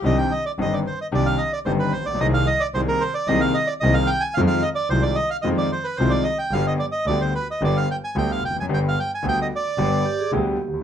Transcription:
<<
  \new Staff \with { instrumentName = "Bandoneon" } { \time 4/4 \key c \minor \tempo 4 = 111 ees''16 g''16 ees''16 d''16 ees''16 d''16 c''16 ees''16 d''16 f''16 ees''16 d''16 c''16 b'16 c''16 d''16 | ees''16 f''16 ees''16 d''16 c''16 bes'16 c''16 d''16 ees''16 f''16 ees''16 d''16 ees''16 f''16 g''16 aes''16 | f''16 f''16 ees''16 d''16 c''16 d''16 ees''16 f''16 ees''16 d''16 c''16 b'16 c''16 d''16 ees''16 g''16 | f''16 ees''16 d''16 ees''16 d''16 c''16 b'16 ees''16 d''16 f''16 g''16 aes''16 g''16 f''16 g''16 aes''16 |
g''16 f''16 g''16 aes''16 g''16 ees''16 d''4. r4 | }
  \new Staff \with { instrumentName = "Vibraphone" } { \time 4/4 \key c \minor r1 | r1 | r1 | r1 |
r2 r8 g'16 aes'16 g'4 | }
  \new Staff \with { instrumentName = "Grand piano" } { \clef bass \time 4/4 \key c \minor <c, c ees c' d' g'>8 r8 <g,, g, ees c' d' g'>8 r8 <c, c ees c' d' g'>8 r8 <g,, g, ees c' d' g'>8 r32 a,,32 bes,,32 b,,32 | <c, c ees bes c' aes'>8 r8 <c, c ees bes c' aes'>8 r8 <c, c ees bes c' aes'>8 r8 <c, c ees bes c' aes'>8 r8 | <f, ees f aes c' f'>8 r8 <c, c ees aes c' f'>8 r8 <f, ees f aes c' f'>8 r8 <c, c ees aes c' f'>8 r8 | <g,, g, d g b g'>8 r8 <d, d g b g'>8 r8 <g,, g, d g b g'>8 r8 <d, d g b g'>8 r32 e,32 f,32 fis,32 |
<g,, g, d g b g'>8 r8 <d, d g b g'>8 r8 <g,, g, d g b g'>8 r8 <d, d g b g'>8 r32 d,32 ees,32 r32 | }
  \new Staff \with { instrumentName = "Double bass" } { \clef bass \time 4/4 \key c \minor c,8 r8 g,,8 r8 c,8 r8 g,,8 bes,,8 | c,8 r8 c,8 r8 c,8 r8 c,8 r8 | f,8 r8 c,8 r8 f,8 r8 c,8 r8 | g,,8 r8 d,8 r8 g,,8 r8 d,8 f,,8 |
g,,8 r8 d,8 r8 g,,8 r8 d,8 ees,8 | }
>>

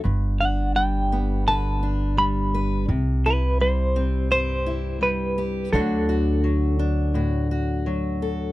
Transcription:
<<
  \new Staff \with { instrumentName = "Clean electric guitar" } { \time 4/4 \key g \major \tempo 4 = 84 r8 fis''8 g''4 a''4 b''4 | r8 b'8 c''4 c''4 b'4 | a'2. r4 | }
  \new Staff \with { instrumentName = "Steel-string acoustic guitar" } { \time 4/4 \key g \major << { r8 d'4 b8 b'8 d'4 b'8 | r8 e'4 c'8 g'8 e'4 g'8 | <fis d' fis'>8 fis'4 d'8 fis'8 fis'4 a'8 | } \\ { g,4 g4 d4 g4 | c4 g4 g,4 g4 | d4 fis4 a,4 fis4 | } >> }
  \new Staff \with { instrumentName = "Upright bass" } { \clef bass \time 4/4 \key g \major g,,1 | c,1 | d,1 | }
>>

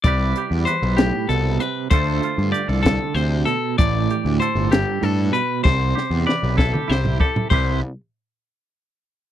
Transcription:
<<
  \new Staff \with { instrumentName = "Clean electric guitar" } { \time 6/8 \key c \major \tempo 4. = 64 d''4 c''8 g'8 a'8 b'8 | c''4 d''8 a'8 c''8 a'8 | d''4 c''8 g'8 a'8 b'8 | c''4 d''8 a'8 c''8 a'8 |
c''8 r2 r8 | }
  \new Staff \with { instrumentName = "Clean electric guitar" } { \time 6/8 \key c \major << { <g e' g' b'>8 g'8 b'2 | <a f' a'>8 f'8 g'16 a'4.~ a'16 | r8 g'8 a'2 | r8 g'8 b'8 e'16 g'16 e'8 g'8 |
<g e' g' b'>8 r2 r8 | } \\ { r4. a,8 b,8 c8 | d4. d8 c8 b,8 | a,4. g,8 a,8 b,8 | c2. |
c8 r2 r8 | } >> }
  \new Staff \with { instrumentName = "Picked electric bass" } { \clef bass \time 6/8 \key c \major c,8 r16 e,16 r16 b,,8 r16 c,8 r8 | d,8 r16 g,16 r16 c,8 r16 d,8 r8 | a,,8 r16 d,16 r16 g,,8 r16 g,8 r8 | c,8 r16 e,16 r16 b,,8 r16 c,8 r8 |
c,8 r2 r8 | }
  \new DrumStaff \with { instrumentName = "Drums" } \drummode { \time 6/8 <hh bd>8 hh8 hh8 <hh sn>8 hh8 hh8 | <hh bd>8 hh8 hh8 <hh bd sn>8 hh8 hh8 | <hh bd>8 hh8 hh8 <hh sn>8 hh8 hh8 | <bd sn>8 sn8 sn8 <bd sn>16 toml16 sn16 tomfh16 bd16 tomfh16 |
<cymc bd>4. r4. | }
>>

